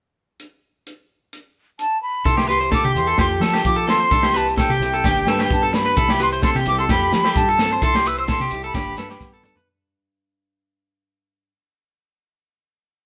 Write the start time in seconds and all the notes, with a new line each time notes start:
0.40 closed hi-hat
0.86 closed hi-hat
1.33 closed hi-hat
1.79 A5, closed hi-hat
2.02 B5
2.25 C2 C3 E4 A4 C6, kick, shekere
2.37 G4, snare, shekere
2.49 G4 B4 C6, shekere
2.61 C5, shekere
2.72 D3 A4 D6, kick, snare, shekere
2.84 C3 G4, shekere
2.95 E2 E3 C6, shekere
3.07 A4, shekere
3.18 F2 F3 G4 A4 C6, kick, snare, shekere
3.40 F3 A4 A5, snare, shekere
3.53 G4, snare
3.65 F3 F4 D6, kick, shekere
3.76 A4
3.88 C4 A4 C6, snare, shekere
4.00 C5
4.11 C2 C3 D4 A4, kick, shekere
4.23 E4 G4, snare, shekere
4.34 G4 B4 A5, shekere
4.48 shekere
4.57 C4 A4 G5, kick, snare, shekere
4.69 C3 G4, shekere
4.80 C2 G3 E4, shekere
4.94 A4, shekere
5.04 G1 G2 D4 G4, kick, snare, shekere
5.26 G2 A4 B4, snare, shekere
5.39 G4, snare
5.50 G2 B3 A5, kick, shekere
5.63 A4
5.73 G3 D4 B5, muted clean electric guitar stroke, snare, shekere
5.86 B4
5.96 C2 C3 E4 A4, kick, shekere
6.09 G4, snare, shekere
6.20 G4 B4 C6, shekere
6.32 C5, shekere
6.42 C4 A4 C6, kick, snare, shekere
6.55 C3 G4, snare, shekere
6.65 C2 G3 E4 D6, shekere
6.78 A4 C6, shekere
6.89 F2 F3 G4 A4 B5, kick, snare, shekere
7.12 F3 G4, snare, shekere
7.24 G4 A4, snare
7.36 G2 A5, muted nylon-string guitar stroke, kick, shekere
7.48 F4 A4
7.59 C4 A4, snare, shekere
7.73 C5
7.82 C2 C3 E4 A4 C6, kick, shekere
7.95 G4, snare, shekere
8.06 G4 B4 E6, shekere
8.17 C5 E6, shekere
8.28 A4 C6, muted nylon-string guitar stroke, kick, snare, shekere
8.40 C3 G4, snare, shekere
8.51 C2 G3 E4, shekere
8.63 A4 B5, shekere
8.74 G1 G2 D4 G4, kick, snare, shekere
8.97 G2 A4 B4, snare, shekere
9.10 G4, snare, shekere
9.20 G2 B3, kick, snare, shekere
9.33 A4, shekere
9.43 D4 A4, muted nylon-string guitar stroke, mid tom, shekere
9.55 B4, floor tom, shekere